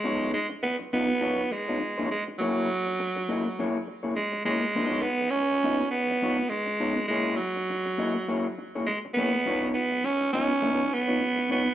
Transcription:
0.00 0.33 G#3 loud
0.04 0.32 B3 medium
0.04 0.32 D#4 loud
0.04 0.32 F4 medium
0.04 0.33 C#5 medium
0.34 0.47 G#3 medium
0.50 muted clean electric guitar stroke soft
0.63 0.76 B3 medium
0.63 muted clean electric guitar stroke soft
0.79 muted clean electric guitar stroke soft
0.93 1.12 B3 medium
0.93 1.54 B3 loud
0.93 1.08 D#4 medium
0.93 1.08 F4 medium
0.93 1.07 D#5 medium
1.07 muted clean electric guitar stroke medium
1.21 1.40 B3 medium
1.21 1.40 D#4 medium
1.21 1.40 F4 medium
1.21 1.41 C#5 medium
1.51 2.11 G#3 medium
1.51 muted clean electric guitar stroke soft
1.68 1.79 B3 medium
1.68 1.80 D#4 medium
1.68 1.80 F4 medium
1.68 1.80 C#5 medium
1.81 muted clean electric guitar stroke soft
1.98 2.09 B3 medium
1.98 2.10 D#4 medium
1.98 2.09 F4 medium
1.98 2.10 C#5 medium
2.10 2.24 G#3 medium
2.10 muted clean electric guitar stroke soft
2.27 muted clean electric guitar stroke soft
2.39 3.84 F#3 medium
2.39 2.67 A#3 medium
2.39 2.67 E4 medium
2.39 2.68 G#4 medium
2.39 2.68 C#5 medium
2.87 muted clean electric guitar stroke soft
2.99 muted clean electric guitar stroke soft
3.16 muted clean electric guitar stroke medium
3.28 3.46 A#3 medium
3.28 3.45 E4 medium
3.28 3.44 G#4 medium
3.28 3.45 D#5 medium
3.45 muted clean electric guitar stroke medium
3.59 3.76 A#3 medium
3.59 3.77 E4 medium
3.59 3.77 G#4 medium
3.59 3.77 C#5 loud
3.87 muted clean electric guitar stroke soft
4.03 4.15 A#3 medium
4.03 4.15 E4 medium
4.03 4.15 G#4 medium
4.03 4.14 C#5 medium
4.16 4.43 G#3 medium
4.16 muted clean electric guitar stroke soft
4.32 muted clean electric guitar stroke medium
4.45 5.03 G#3 loud
4.45 4.63 A#3 medium
4.45 4.62 E4 medium
4.45 4.62 G#4 medium
4.45 4.61 C#5 medium
4.63 muted clean electric guitar stroke medium
4.75 4.86 A#3 loud
4.75 4.87 D4 loud
4.75 4.87 E4 medium
4.75 4.87 C5 loud
4.86 5.02 B3 loud
4.86 5.02 D#4 loud
4.86 5.03 F4 medium
4.86 5.03 C#5 loud
5.02 5.32 B3 loud
5.22 muted clean electric guitar stroke soft
5.30 5.90 C#4 loud
5.35 muted clean electric guitar stroke soft
5.51 muted clean electric guitar stroke soft
5.64 5.81 B3 medium
5.64 5.80 D#4 medium
5.64 5.80 F4 medium
5.64 5.80 D#5 loud
5.80 muted clean electric guitar stroke medium
5.91 6.51 B3 loud
6.10 muted clean electric guitar stroke soft
6.22 6.40 B3 medium
6.22 6.39 D#4 medium
6.22 6.39 F4 medium
6.22 6.38 C#5 medium
6.39 muted clean electric guitar stroke soft
6.49 7.07 G#3 medium
6.49 muted clean electric guitar stroke soft
6.66 muted clean electric guitar stroke soft
6.80 6.98 B3 medium
6.80 6.96 D#4 medium
6.80 6.96 F4 medium
6.80 6.96 C#5 medium
6.97 muted clean electric guitar stroke soft
7.08 7.38 G#3 loud
7.08 7.37 A#3 medium
7.08 7.37 E4 medium
7.08 7.37 G#4 loud
7.08 7.37 C#5 medium
7.37 8.55 F#3 medium
7.56 muted clean electric guitar stroke soft
7.70 muted clean electric guitar stroke soft
7.86 muted clean electric guitar stroke soft
7.98 8.16 A#3 medium
7.98 8.15 E4 medium
7.98 8.16 G#4 medium
7.98 8.16 D#5 loud
8.16 muted clean electric guitar stroke soft
8.28 8.46 A#3 medium
8.28 8.46 E4 medium
8.28 8.46 G#4 medium
8.28 8.46 C#5 medium
8.58 muted clean electric guitar stroke soft
8.75 8.86 A#3 soft
8.75 8.86 E4 medium
8.75 8.86 G#4 medium
8.75 8.85 C#5 medium
8.86 8.99 G#3 medium
8.86 muted clean electric guitar stroke medium
9.05 muted clean electric guitar stroke soft
9.14 9.34 A#3 medium
9.14 9.69 B3 loud
9.14 9.34 E4 medium
9.14 9.33 G#4 medium
9.18 9.33 C#5 medium
9.34 muted clean electric guitar stroke medium
9.46 9.72 B3 medium
9.46 9.72 D#4 medium
9.46 9.72 F4 loud
9.46 9.73 C#5 medium
9.74 10.06 B3 loud
9.91 muted clean electric guitar stroke soft
10.04 10.32 C#4 loud
10.04 muted clean electric guitar stroke soft
10.21 muted clean electric guitar stroke soft
10.33 10.51 B3 medium
10.33 10.95 C#4 loud
10.33 10.49 D#4 medium
10.33 10.48 F4 medium
10.33 10.48 D#5 medium
10.49 muted clean electric guitar stroke soft
10.62 10.83 B3 medium
10.62 10.83 D#4 medium
10.62 10.83 F4 medium
10.62 10.83 C#5 medium
10.93 11.51 B3 loud
10.93 muted clean electric guitar stroke soft
11.08 11.20 B3 soft
11.08 11.20 D#4 medium
11.08 11.19 F4 medium
11.08 11.19 C#5 medium
11.21 muted clean electric guitar stroke medium
11.36 muted clean electric guitar stroke medium
11.49 11.68 B3 medium
11.49 11.74 B3 medium
11.49 11.65 D#4 medium
11.49 11.65 F4 medium
11.49 11.64 C#5 medium
11.65 muted clean electric guitar stroke soft

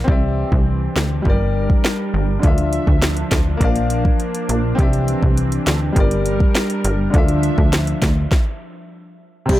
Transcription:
0.00 0.10 A#4 medium
0.00 0.09 D5 medium
0.04 0.44 C2 loud
0.04 1.25 E3 medium
0.04 1.21 C4 medium
0.04 1.25 C4 medium
0.04 7.10 D4 medium
0.04 1.23 G4 medium
0.04 kick loud
0.09 1.24 D5 medium
0.09 1.25 E5 medium
0.52 0.88 C2 loud
0.52 kick medium
0.96 1.20 D2 loud
0.96 snare loud
1.22 1.74 G1 loud
1.22 2.39 G3 medium
1.22 2.42 G3 medium
1.22 2.40 G4 medium
1.22 2.42 A#4 medium
1.22 kick medium
1.27 2.42 A#4 medium
1.27 2.43 D5 medium
1.70 kick medium
1.85 snare loud
2.14 2.38 G1 loud
2.39 3.57 D3 medium
2.39 4.76 F3 medium
2.39 3.58 D4 medium
2.39 kick loud
2.43 2.80 D2 loud
2.43 3.59 F4 medium
2.43 3.60 E5 medium
2.43 closed hi-hat medium
2.58 closed hi-hat medium
2.73 closed hi-hat medium
2.87 3.24 D2 medium
2.87 kick medium
3.02 snare loud
3.02 closed hi-hat medium
3.17 closed hi-hat medium
3.31 3.56 D2 loud
3.31 kick loud
3.31 snare loud
3.31 closed hi-hat medium
3.57 4.09 A#1 loud
3.57 4.74 A#3 medium
3.57 4.77 A#3 medium
3.57 4.76 A#4 medium
3.57 kick medium
3.57 closed hi-hat medium
3.62 4.77 D5 medium
3.62 4.78 F5 medium
3.76 closed hi-hat medium
3.90 closed hi-hat medium
4.05 kick medium
4.20 closed hi-hat medium
4.35 closed hi-hat medium
4.49 4.73 A#1 medium
4.49 closed hi-hat medium
4.75 5.15 C2 loud
4.75 5.95 E3 medium
4.75 5.92 C4 medium
4.75 5.95 C4 medium
4.75 5.93 G4 medium
4.75 kick loud
4.75 closed hi-hat medium
4.80 5.95 D5 medium
4.80 5.96 E5 medium
4.93 closed hi-hat medium
5.08 closed hi-hat medium
5.23 5.59 C2 medium
5.23 kick medium
5.38 closed hi-hat medium
5.52 closed hi-hat medium
5.67 5.91 D2 loud
5.67 snare loud
5.67 closed hi-hat medium
5.93 6.44 G1 loud
5.93 7.10 G3 medium
5.93 7.13 G3 medium
5.93 7.11 G4 medium
5.93 7.13 A#4 medium
5.93 kick medium
5.93 closed hi-hat medium
5.97 7.12 A#4 medium
5.97 7.14 D5 medium
6.11 closed hi-hat medium
6.26 closed hi-hat medium
6.40 kick medium
6.55 snare loud
6.55 closed hi-hat medium
6.70 closed hi-hat medium
6.84 7.09 G1 loud
6.84 closed hi-hat medium
7.10 7.50 D2 loud
7.10 8.27 D3 medium
7.10 8.30 F3 medium
7.10 8.29 D4 medium
7.10 8.30 D4 medium
7.10 kick loud
7.10 closed hi-hat medium
7.14 8.30 F4 medium
7.14 8.31 E5 medium
7.29 closed hi-hat medium
7.43 closed hi-hat medium
7.58 7.94 D2 medium
7.58 kick medium
7.73 snare loud
7.73 closed hi-hat medium
7.87 closed hi-hat medium
8.02 8.26 D2 loud
8.02 kick loud
8.02 snare loud
8.02 closed hi-hat medium
8.32 kick loud
8.32 snare medium
9.46 9.60 C2 loud
9.46 9.60 C3 medium
9.46 9.60 C4 medium
9.46 9.60 G4 loud
9.46 kick loud
9.46 closed hi-hat medium
9.46 crash loud
9.51 9.60 E4 medium
9.51 9.60 D5 medium

